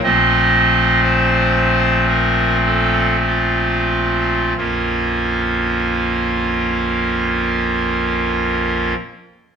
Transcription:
pipe organ
0.03 A#1 A#2 F3 A3 C4 D#5
1.03 C5
2.09 A#4
2.66 A4
3.27 F4
4.57 A#1 F2 F3 A#3 C#4 F4 A#4

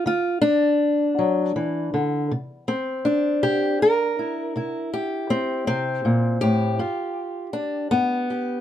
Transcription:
steel-string acoustic guitar
0.06 D3 F4
0.41 D4
1.19 F#3
1.56 E3
1.94 D3
2.31 C3
2.68 C4
3.05 D4
3.43 C3 G4
3.82 A#4
4.19 E4
4.56 C3 E4
4.93 G4
5.30 C4
5.67 C3 C4
6.05 A#2
6.41 A2 G4
6.79 G2 F4
7.53 D4
7.91 G2 B3
8.30 G4

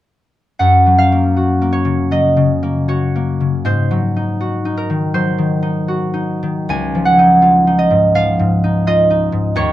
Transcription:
harp
0.59 F#2 F#5
0.86 F#3
0.98 F5
1.12 A#3
1.37 F#4
1.62 A#3
1.73 C#5
1.85 C#3
2.11 F#3 D#5
2.37 C#3
2.63 A#3
2.88 F#4 C#5
3.15 A#3
3.40 C#3
3.65 G#2 C5
3.91 F#3
4.16 D#4
4.41 F#4
4.65 D#4
4.77 A#4
4.90 D#3
5.14 F#3 C5
5.38 D#3
5.62 D#4
5.88 F#4
6.14 D#4
6.43 D#3
6.69 C#2 G#5
6.95 F3
7.05 F#5
7.19 D#4
7.42 F4
7.67 D#4
7.79 D#5
7.91 G#2
8.15 F3 F5
8.39 G#2
8.64 D#4
8.87 F4 D#5
9.10 D#4
9.32 G#2
9.56 D#2 C#5

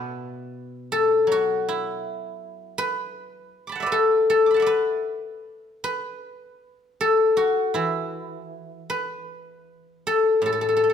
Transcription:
guzheng
Already playing: A2 B2 B4 D5 E5 F#5 A5 B5 D6
0.92 A4
1.27 F#3
1.32 F#4
1.69 E4
2.78 B4
3.67 B5 D6
3.72 F#5 A5
3.80 D5 E5
3.86 B4
3.92 A4
4.30 A4
4.46 D6
4.51 A5 B5
4.56 E5 F#5
4.62 D5
4.67 B4
5.84 B4
7.01 A4
7.37 F#4
7.74 E3 E4
8.90 B4
10.07 A4
10.42 A2
10.46 A4
10.53 A4
10.61 A4
10.69 A4
10.77 A4
10.84 A4
10.90 A4

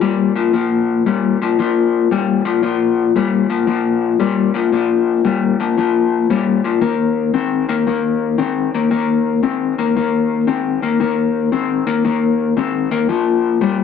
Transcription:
clean electric guitar
0.01 A#2 G3
0.36 A#2 F3
0.53 A#2 F3
1.06 A#2 G3
1.42 A#2 F3
1.59 A#2 F3
2.11 A#2 G3
2.45 A#2 F3
2.63 A#2 F3
3.16 A#2 G3
3.50 A#2 F3
3.67 A#2 F3
4.20 A#2 G3
4.54 A#2 F3
4.72 A#2 F3
5.25 A#2 G3
5.60 A#2 F3
5.78 A#2 F3
6.30 A#2 G3
6.64 A#2 F3
6.81 D#3 A#3
7.34 D#3 C4
7.69 D#3 A#3
7.87 D#3 A#3
8.38 D#3 C4
8.74 D#3 A#3
8.91 D#3 A#3
9.43 D#3 C4
9.78 D#3 A#3
9.97 D#3 A#3
10.47 D#3 C4
10.82 D#3 A#3
11.00 D#3 A#3
11.52 D#3 C4
11.87 D#3 A#3
12.05 D#3 A#3
12.57 D#3 C4
12.91 D#3 A#3
13.09 A#2 F3
13.61 A#2 G3

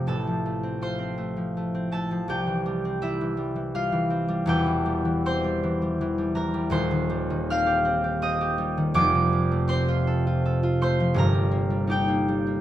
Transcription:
harp
Already playing: C3 F3 A3 C4 F4 G4 F5 G5
0.07 A1 A2 A4 A5
0.27 F3
0.46 A3
0.63 C4
0.81 F4 C5 C6
0.99 C4
1.18 A3
1.37 F3
1.57 A3
1.75 C4
1.92 A3 A4 A5
2.11 F3
2.28 C2 C3 G4 G5
2.47 E3
2.66 G3
2.85 C4
3.02 G3 E4 E5
3.21 E3
3.37 G3
3.56 E3
3.75 G3 F4 F5
3.92 E3
4.10 C4
4.28 G3
4.46 E1 E2 G4 G5
4.66 E3
4.86 G3
5.05 E3
5.26 C4 C5 C6
5.44 G3
5.63 E3
5.82 G3
6.01 E3
6.18 G3
6.35 E3 A#4 A#5
6.54 G3
6.70 D#1 D#2 C5 C6
6.91 D#3
7.10 G3
7.30 D#3
7.50 C4 F5 F6
7.66 G4
7.85 C4
8.04 G4
8.22 C4 D#5 D#6
8.41 G4
8.58 G3
8.77 D#3
8.94 F1 F2 D5 D6
9.14 C3
9.33 F3
9.51 A3
9.68 C4 C5 C6
9.88 F4
10.07 A4
10.27 F4
10.45 A4
10.63 F4
10.81 A3 C5 C6
11.00 F3
11.14 G1 G2 A#4 A#5
11.34 G3
11.51 A#3
11.70 G3
11.87 D#4 G4 G5
12.08 A#3
12.28 G3
12.47 A#3

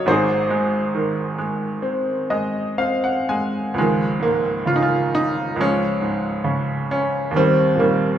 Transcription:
upright piano
Already playing: F#3 A#3 D#4 C#5 D#5 F5
0.06 G#1 G#2 C5
0.10 D#4 G#4
0.50 G#3
0.95 D#3
1.38 G#3
1.82 C4
2.30 G#3 D#5
2.78 C4 F5
3.04 F#5
3.29 G#3 G#5
3.74 C#2
3.78 D#3 F3 G#3
4.20 G#2 A#3
4.66 C#3 F4
4.76 D#4
4.82 F4
5.15 D#4
5.56 C#2
5.60 F3 G#3 C#4
6.01 G#2
6.44 C#3
6.91 C#4
7.31 D#2
7.36 D#3 G3 C4
7.75 A#2 A#3
7.80 D#3 G3

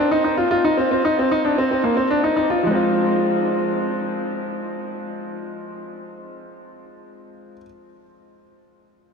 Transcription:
grand piano
0.11 D#4
0.24 D#4
0.37 F4
0.51 F4
0.64 D#4
0.77 C4
0.91 C4
1.05 D#4
1.19 C4
1.32 D#4
1.45 D4
1.58 C4
1.71 C4
1.84 A#3
1.97 C4
2.11 D4
2.24 D#4
2.37 D#4
2.50 F4
2.63 F3 G#3
2.71 C4 F4

